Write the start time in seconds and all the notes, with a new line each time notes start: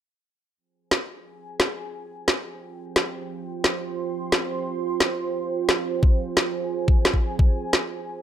0.57 F4 C5 G5 G#5
0.91 snare
1.60 snare
2.28 snare
2.96 snare
3.30 C6
3.64 snare
4.32 snare
5.00 snare
5.69 snare
6.03 G#5, kick
6.37 snare
6.88 kick
7.05 snare
7.14 kick
7.39 kick
7.73 snare